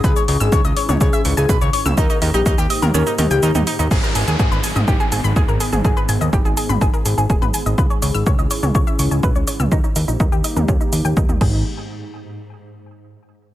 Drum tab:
CC |----------------|----------------|x---------------|----------------|
HH |--o---o---o---o-|--o---o---o---o-|--o---o---o---o-|--o---o---o---o-|
SH |xx-xxx-xxxxxxx-x|xxxxxxxxxxxxxxxx|xxxxxxxxxxxxxxxx|xxxxxxxxxxxxxxxx|
T2 |-------o-------o|-------o--o--o--|-------o-------o|-------o-----o--|
BD |o---o---o---o---|o---o-----------|o---o---o---o---|o---o---o---o---|

CC |----------------|--------------x-|----------------|
HH |--o---o---o---o-|--o---o---o-----|----------------|
SH |xxxxxxxxxxxxxxxx|xxxxxxxxxxxxxx--|----------------|
T2 |-------o-------o|-------o-----o--|----------------|
BD |o---o---o---o---|o---o---o---o-o-|----------------|